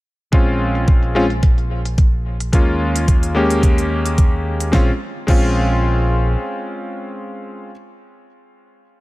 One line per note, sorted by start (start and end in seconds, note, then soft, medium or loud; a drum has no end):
0.32 2.51 A#1 medium
0.32 1.12 G#3 medium
0.32 1.12 C4 medium
0.32 1.13 C#4 medium
0.32 1.13 F4 medium
0.32 kick loud
0.32 closed hi-hat medium
0.75 closed hi-hat soft
0.88 kick loud
0.88 closed hi-hat medium
1.03 closed hi-hat soft
1.15 1.23 G#3 medium
1.15 1.24 C4 medium
1.15 1.24 C#4 medium
1.15 1.24 F4 loud
1.30 closed hi-hat soft
1.43 kick loud
1.43 closed hi-hat medium
1.58 closed hi-hat soft
1.85 closed hi-hat soft
1.98 kick loud
1.98 closed hi-hat medium
2.40 closed hi-hat soft
2.52 4.71 D#2 medium
2.52 3.32 G#3 medium
2.52 3.33 A#3 medium
2.52 3.33 C#4 medium
2.52 3.33 F4 medium
2.52 kick loud
2.52 closed hi-hat medium
2.96 closed hi-hat soft
3.08 kick loud
3.08 closed hi-hat medium
3.23 closed hi-hat soft
3.35 4.70 G#3 medium
3.35 4.70 A#3 medium
3.35 4.70 C#4 medium
3.35 4.71 G4 medium
3.50 closed hi-hat soft
3.63 kick loud
3.63 closed hi-hat medium
3.78 closed hi-hat soft
4.06 closed hi-hat soft
4.18 kick loud
4.18 closed hi-hat medium
4.60 closed hi-hat soft
4.72 4.89 A#1 medium
4.72 4.89 G#3 medium
4.72 4.89 C4 medium
4.72 4.90 C#4 medium
4.72 4.90 F4 medium
4.72 kick loud
4.72 snare medium
5.27 6.34 A#1 medium
5.27 7.69 G#3 medium
5.27 7.69 C4 medium
5.27 7.70 C#4 medium
5.27 7.70 F4 medium
5.27 kick loud
5.27 crash medium